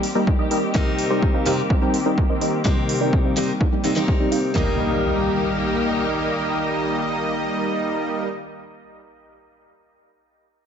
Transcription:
Already playing: D#3 G3 C4 G4
0.03 open hi-hat
0.15 G3 A#3 D#4 A#4 D#5
0.27 kick
0.39 G3 A#3 D#4 A#4 D#5
0.51 G3 A#3 D#4 A#4 D#5, open hi-hat
0.74 C3 D#3 G3 A#3 C4 D#4 G4 A#4 D#5, kick
0.99 open hi-hat
1.10 G3 C4 D#4 A#4 D5
1.23 kick
1.34 G3 C4 D#4 A#4 F5
1.46 C3 G3 C4 D#4 G4 A#4 F5, open hi-hat
1.70 G3 C4 D#4 A#4 F5, kick
1.82 G3 C4 D#4 A#4 G5
1.94 open hi-hat
2.06 G3 C4 D#4 A#4 D#5
2.18 kick
2.30 G3 C4 D#4 A#4 D#5
2.41 G3 C4 D#4 A#4 D#5, open hi-hat
2.64 C3 G3 C4 D#4 G4 A#4 D#5, kick
2.89 open hi-hat
3.01 G3 C4 D#4 A#4 D5
3.13 kick
3.25 G3 C4 D#4 A#4 F5
3.36 C3 G3 C4 D#4 G4 A#4 F5, open hi-hat
3.61 G3 C4 D#4 A#4 F5, kick
3.72 G3 C4 D#4 A#4 G5
3.84 C3 G3 C4 D#4 G4 A#4 F5, open hi-hat
3.95 C3 G3 C4 D#4 G4 A#4 F5
4.08 kick
4.20 G3 C4 D#4 A#4 D5
4.32 G3 C4 D#4 A#4 F5, open hi-hat
4.54 D#3 G3 A#3 D#4 G4 A#4 D#5, kick, floor tom, impact

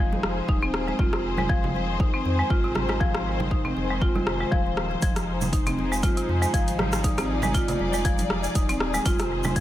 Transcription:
Already playing: F1 F3 D#4 G#4 C5
0.00 F3
0.12 high conga
0.23 F1, cross-stick, muted conga
0.48 D#1 D#4, kick, high conga
0.62 C4, muted conga
0.74 cross-stick
0.88 G#3, muted conga
0.98 F1 D#3 C4 F4, kick, high conga
1.13 C3, cross-stick, muted conga
1.38 G#3, high conga, low conga
1.49 F3, kick, muted conga
1.64 low conga
1.75 muted conga, high conga
2.00 D#4, kick, muted conga, high conga
2.14 C4
2.25 F2, muted conga
2.39 G#3
2.50 G#1 F4, kick
2.64 C3, muted conga
2.75 cross-stick, high conga, low conga
2.89 G#3, cross-stick, muted conga
3.01 F3, kick, high conga
3.15 cross-stick, muted conga
3.40 high conga, low conga
3.51 D#4, kick, muted conga
3.65 C4, low conga
3.76 F1, muted conga, high conga
3.90 G#3
4.01 F4, kick, muted conga
4.15 C3, high conga
4.27 F1, cross-stick, muted conga
4.40 G#3
4.52 D#1 F3, kick, high conga
4.66 muted conga
4.77 cross-stick
4.91 muted conga
5.02 F1 F3 D#4 G#4, kick, closed hi-hat, high conga, shaker
5.16 cross-stick, closed hi-hat, muted conga, shaker
5.41 high conga, low conga, shaker
5.53 D#4, kick, closed hi-hat, shaker
5.66 C4, closed hi-hat, low conga, shaker
5.78 muted conga, high conga
5.92 G#3, shaker
6.03 F4, kick, closed hi-hat, muted conga, high conga, shaker
6.17 C3, closed hi-hat, shaker
6.29 F2, muted conga
6.42 G#3, closed hi-hat, shaker
6.53 G#1 F3, kick, closed hi-hat, shaker
6.68 closed hi-hat, muted conga, shaker
6.79 cross-stick, high conga, low conga
6.92 cross-stick, closed hi-hat, muted conga, shaker
7.04 D#4 D5, kick, closed hi-hat, high conga, shaker
7.18 C4, cross-stick, closed hi-hat, muted conga, shaker
7.42 G#3, high conga, low conga, shaker
7.54 F4, kick, closed hi-hat, muted conga, shaker
7.68 C3, closed hi-hat, low conga, shaker
7.79 F1, muted conga, high conga
7.93 G#3, shaker
8.05 F3, kick, closed hi-hat, muted conga, shaker
8.18 closed hi-hat, high conga, shaker
8.30 F1, cross-stick, muted conga
8.44 closed hi-hat, shaker
8.55 D#1 D#4, kick, closed hi-hat, high conga, shaker
8.69 C4, closed hi-hat, muted conga, shaker
8.80 cross-stick
8.94 G#3, closed hi-hat, muted conga, shaker
9.05 F1 D#3 C4 F4 C5, kick, closed hi-hat, riser, high conga, shaker
9.19 C3, cross-stick, closed hi-hat, muted conga, shaker
9.44 G#3, high conga, low conga, shaker
9.56 F3, kick, closed hi-hat, muted conga, shaker

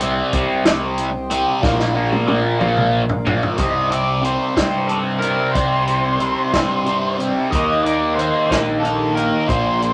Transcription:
Already playing: C2 G4 C5 D#5
0.01 C3 G3 C4, closed hi-hat
0.33 C2 C3 G3 C4, kick, closed hi-hat
0.64 C2 C3 G3 C4, snare, closed hi-hat
0.98 closed hi-hat
1.30 C3 G3 C4, closed hi-hat
1.62 A#1 A#2 F3 A#3 F4 A#4 D5, kick, snare
1.79 snare
1.95 A#2 F3 A#3
2.12 high tom
2.26 A#1 A#2 F3 A#3, high tom
2.60 A#1 A#2 F3 A#3, mid tom
2.77 mid tom
3.09 floor tom
3.25 A#2 F3 A#3, floor tom
3.43 floor tom
3.56 C2 C3 G3 C4 D#4 G4 C5 D#5, kick, closed hi-hat
3.90 G3 C4 D5, closed hi-hat
4.22 C3 G3 C4 C5, closed hi-hat
4.56 G2 G3 C4 C5, kick, snare, closed hi-hat
4.87 C3 G3 A4, closed hi-hat
4.92 C4
5.19 C4 A#4, closed hi-hat
5.23 G3
5.52 C2 C3 C5, kick, closed hi-hat
5.56 G3 C4
5.87 G3 C4, closed hi-hat
6.19 C3 G3 C4, closed hi-hat
6.53 G2 G3 C4, kick, snare, closed hi-hat
6.86 C3 G3 C4, closed hi-hat
7.18 G3 C4, closed hi-hat
7.51 D#2 D#3 A#3 G4 D#5, kick, closed hi-hat
7.55 D#4
7.83 D#4 D5, closed hi-hat
7.87 A#3
8.15 D#3 C5
8.19 A#3 D#4, closed hi-hat
8.47 A#1 D#4 C5, kick
8.52 A#3, snare, closed hi-hat
8.80 D#3 A4
8.85 A#3 D#4, closed hi-hat
9.15 D#4 A#4, closed hi-hat
9.19 A#3
9.47 A#1 A#2 F3 A#3 D4 F4 C5, kick, closed hi-hat
9.81 F3 A#3, closed hi-hat

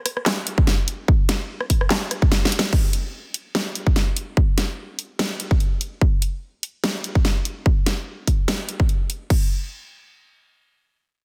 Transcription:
0.06 cross-stick, open hi-hat
0.17 cross-stick
0.26 snare, clap
0.47 closed hi-hat
0.58 kick
0.67 snare, closed hi-hat
0.88 closed hi-hat
1.08 kick
1.29 snare, closed hi-hat
1.61 cross-stick
1.70 kick, open hi-hat
1.81 cross-stick
1.90 snare, clap
2.11 cross-stick, closed hi-hat
2.22 kick
2.32 snare, closed hi-hat
2.45 snare
2.52 closed hi-hat
2.59 snare
2.73 kick, crash
2.93 closed hi-hat
3.34 closed hi-hat
3.55 snare
3.75 closed hi-hat
3.87 kick
3.96 snare, closed hi-hat
4.17 closed hi-hat
4.37 kick
4.58 snare, closed hi-hat
4.99 closed hi-hat
5.19 snare
5.40 closed hi-hat
5.51 kick
5.60 closed hi-hat
5.81 closed hi-hat
6.01 kick
6.22 closed hi-hat
6.63 closed hi-hat
6.84 snare
7.04 closed hi-hat
7.15 kick
7.25 snare, closed hi-hat
7.45 closed hi-hat
7.66 kick
7.86 snare, closed hi-hat
8.28 kick, closed hi-hat
8.48 snare
8.69 closed hi-hat
8.80 kick
8.89 closed hi-hat
9.10 closed hi-hat
9.30 kick, crash

